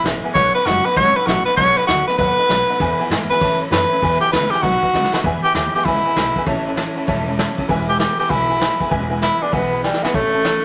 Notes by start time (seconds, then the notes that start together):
0.04 A1 E3 G#3 B3 E4 B4 E5 G#5, snare, ride
0.23 E3 G#3 B3 E4 B4 E5 G#5, muted upright bass stroke, ride
0.34 B1 B2 F#3 B3 D#4 F#4 B4 C#5 D#5 F#5, kick, ride
0.54 B3 D#4 F#4 B4 D#5 F#5, ride
0.65 F#1 F#3 B3 D#4 F#4 B4 D#5 F#5, snare, ride
0.84 B3 D#4 F#4 B4 D#5 F#5, ride
0.94 G#1 B2 F#3 B3 D#4 F#4 B4 C#5 D#5 F#5, kick, ride
1.15 B3 D#4 F#4 B4 D#5 F#5, muted upright bass stroke, ride
1.26 A1 F#3 B3 D#4 F#4 B4 D#5 F#5, snare, ride
1.46 B3 D#4 F#4 B4 D#5 F#5, muted upright bass stroke, ride
1.56 B1 B2 F#3 B3 D#4 F#4 B4 C#5 D#5 F#5, kick, ride
1.77 B3 D#4 F#4 B4 D#5 F#5, muted upright bass stroke, ride
1.87 D2 F#3 B3 D#4 F#4 B4 D#5 F#5, snare, ride
2.07 B3 D#4 F#4 B4 D#5 F#5, muted upright bass stroke, snare, ride
2.18 D#2 B2 F#3 B3 D#4 F#4 B4 D#5 F#5, kick, ride
2.37 D#4 F#4 B4 D#5 F#5, muted upright bass stroke, ride
2.48 B1 F#3 B3 D#4 F#4 B4 D#5 F#5, snare, ride
2.68 B3 D#4 F#4 B4 D#5 F#5, muted upright bass stroke, ride
2.79 E2 B2 E3 G#3 B3 E4 B4 E5 G#5, kick, ride
2.99 E3 G#3 B3 E4 B4 E5 G#5, ride
3.10 G#2 E3 G#3 B3 E4 B4 E5 G#5, snare, ride
3.30 E3 G#3 B3 E4 B4 E5 G#5, muted upright bass stroke, ride
3.41 A2 E3 A3 C#4 E4 C#5 E5 A5, kick, ride
3.60 A3 C#4 E4 C#5 E5 B5, muted upright bass stroke, ride
3.71 F#2 E3 A3 C#4 E4 B4 C#5 E5 A5, snare, ride
3.90 A3 C#4 E4 C#5 E5 A5, ride
4.01 E2 B2 E3 G#3 B3 E4 B4 E5 G#5, kick, ride
4.20 E3 G#3 B3 E4 G4 B4 E5 G#5, muted upright bass stroke, ride
4.31 C#2 E3 G#3 B3 E4 B4 E5 B5, snare, ride
4.51 E3 G#3 B3 E4 G4 B4 E5 G#5, muted upright bass stroke, snare, ride
4.62 B1 B2 F#3 B3 D#4 F#4 B4 D#5 F#5, kick, ride
4.82 B3 D#4 F#4 B4 D#5 F#5, kick, ride
4.92 C#2 F#3 B3 D#4 F#4 B4 D#5 F#5, snare
5.04 snare
5.12 B3 D#4 F#4 B4 D#5 F#5, muted upright bass stroke, snare
5.23 E2 B2 E3 G#3 B3 E4 B4 E5 G#5, kick, ride
5.43 E3 G#3 B3 E4 G4 B4 E5 G#5, muted upright bass stroke, ride
5.54 D#2 E3 G#3 B3 E4 G4 B4 E5 G#5, snare, ride
5.74 E3 G#3 B3 E4 G4 B4 E5 G#5, muted upright bass stroke, ride
5.85 C#2 E2 B2 E3 G#3 B3 E4 B4 E5 G#5, kick, ride
6.05 E3 G#3 B3 E4 B4 E5 G#5, muted upright bass stroke, ride
6.16 B1 G#3 B3 E4 B4 E5 G#5, snare, ride
6.36 E3 G#3 B3 E4 B4 E5 G#5, kick, ride
6.46 A1 A2 E3 A3 C#4 E4 C#5 E5 A5, kick, ride
6.66 A3 C#4 E4 C#5 E5 A5, ride
6.76 E3 A3 C#4 E4 C#5 E5 A5, snare, ride
6.96 A3 C#4 E4 C#5 E5 A5, muted upright bass stroke, ride
7.07 E1 A2 E3 A3 C#4 E4 C#5 E5 A5, kick, ride
7.27 A3 C#4 E4 C#5 E5 A5, ride
7.37 E3 A3 C#4 E4 C#5 E5 A5, snare, ride
7.57 A3 C#4 E4 C#5 E5 A5, kick, ride
7.68 E1 E2 B2 E3 G#3 B3 E4 B4 E5 G#5, kick, ride
7.87 E3 G#3 B3 E4 G4 B4 E5 G#5, ride
7.98 E3 G#3 B3 G4 B4 E5 G#5, snare, ride
8.18 E3 G#3 B3 E4 G4 B4 E5 G#5, muted upright bass stroke, ride
8.29 B1 E2 B2 E3 G#3 B3 E4 B4 E5 G#5, kick, ride
8.48 E3 G#3 B3 E4 B4 E5 G#5, ride
8.59 E3 B3 E4 B4 E5 G#5, snare, ride
8.79 E3 G#3 B3 E4 B4 E5 G#5, kick, ride
8.89 E1 E2 B2 E3 G#3 B3 E4 B4 E5 G#5, kick, ride
9.09 E3 G#3 B3 E4 B4 E5 G#5, ride
9.21 E3 G#3 B3 E4 B4 E5 B5, snare, ride
9.40 G#3 B3 D4 E4 B4 E5 G#5, muted upright bass stroke, ride
9.44 E3
9.51 B1 E2 B2 E3 G#3 B3 E4 B4 E5 G#5, kick, ride
9.72 E3 G#3 B3 E4 B4 E5 B5, ride
9.83 E3 G3 G#3 B3 E4 B4 E5 G#5, snare
9.94 snare
10.02 E3 G#3 B3 E4 B4 E5 G#5, muted upright bass stroke, snare
10.13 A1 A2 E3 A3 C#4 E4 C#5 E5 A5, kick, ride
10.33 A3 C#4 E4 C#5 E5 A5, ride
10.44 E3 A3 C#4 E4 C#5 E5 A5, snare, ride